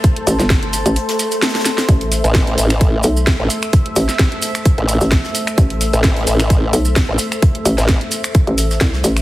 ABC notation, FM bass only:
X:1
M:4/4
L:1/16
Q:"Swing 16ths" 1/4=130
K:Am
V:1 name="FM bass" clef=bass
z2 A,,, G,,,4 A,,, z8 | A,,,3 z6 z B,,,3 z3 | z2 A,,, z8 A,,,2 z3 | A,,,3 z6 z B,,,3 z3 |
z2 A,,, z6 A,,,3 C,,2 A,,,2 |]